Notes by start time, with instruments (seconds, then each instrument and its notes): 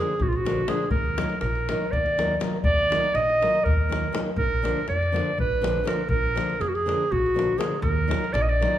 Already playing: nylon-string guitar D3 F3 A#3, clarinet G#4
0.00 nylon-string guitar D4
0.19 upright bass A#1, clarinet F#4, davul low
0.28 clarinet F4
0.33 clarinet F#4, davul high
0.45 nylon-string guitar D3 F3 A#3 D4, davul high
0.68 nylon-string guitar D3 F3 A#3 D4, clarinet G#4, davul high
0.90 upright bass D#2, clarinet A#4, davul low
1.17 nylon-string guitar D#3 F#3 A#3 D#4, davul high
1.30 davul high
1.40 upright bass A#1, clarinet A#4, davul high
1.55 davul high
1.69 nylon-string guitar D#3 F#3 A#3 D#4, davul high
1.92 upright bass D#2, clarinet D5, davul low
2.06 davul high
2.18 nylon-string guitar D#3 F#3 A#3 D#4, davul high
2.40 nylon-string guitar D#3 F#3 A#3 D#4, davul high
2.63 upright bass D#2, clarinet D5, davul low
2.78 davul high
2.90 nylon-string guitar D#3 F#3 A#3 D#4, davul high
3.04 davul high
3.14 upright bass A#1, clarinet D#5, davul high
3.30 davul high
3.41 nylon-string guitar D#3 F#3 A#3 D#4, davul high
3.55 davul high
3.64 upright bass D#2, clarinet A#4, davul low
3.89 nylon-string guitar D#3 F#3 A#3 D#4, davul high
4.04 davul high
4.12 nylon-string guitar D#3 F#3 A#3 D#4, davul high
4.27 davul high
4.36 upright bass A#1, clarinet A#4, davul low
4.62 nylon-string guitar D3 F3 A#3 D4, davul high
4.77 davul high
4.88 upright bass F2, clarinet D5, davul high
5.03 davul high
5.12 nylon-string guitar D3 F3 A#3 D4, davul high
5.38 upright bass A#1, clarinet B4, davul low
5.52 davul high
5.61 nylon-string guitar D3 F3 A#3 D4, davul high
5.84 nylon-string guitar D3 F3 A#3 D4, clarinet A#4, davul high
6.08 upright bass A#1, clarinet A#4, davul low
6.35 nylon-string guitar D3 F3 A#3 D4, davul high
6.50 davul high
6.61 upright bass F2, clarinet G#4, davul high
6.69 clarinet F#4
6.75 clarinet G#4, davul high
6.86 nylon-string guitar D3 F3 A#3 D4, davul high
7.12 upright bass A#1, clarinet F#4, davul low
7.26 davul high
7.34 nylon-string guitar D3 F3 A#3 D4
7.39 davul high
7.58 nylon-string guitar D3 F3 A#3 D4, clarinet G#4, davul high
7.81 upright bass D#2, clarinet A#4, davul low
8.08 nylon-string guitar D#3 F#3 A#3 D#4, davul high
8.24 davul high
8.33 upright bass A#1, clarinet D5, davul high
8.41 clarinet D#5
8.49 clarinet D5, davul high
8.60 nylon-string guitar D#3 F#3 A#3 D#4, davul high